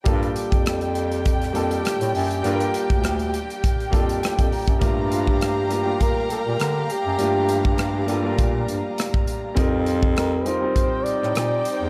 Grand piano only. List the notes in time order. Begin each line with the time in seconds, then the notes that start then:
0.04 G3 A#3 D4 F4 A4
1.53 G3 A#3 D4 F4 A4
2.43 G3 A#3 D4 F4
2.47 A4
2.53 A#4
3.90 G3 A#3 D4 F4 A4 F5
4.23 G5
4.52 A#5
4.79 G3 A3 A#3 D4 F4
5.68 G3 A#3 D4 F4
5.72 G4
5.84 G3 A#3 D4 F4 A#4
7.17 G3 A3 A#3 D4 F4
8.06 G3 A#3 D4 F4 A4
8.23 G3 A#3 D4 F4 A#4
9.54 G3 C4 D#4 F4
9.59 A#4
10.45 G3 C4 D#4 F4 A#4
10.60 G3 C4 D#4 F4 A#4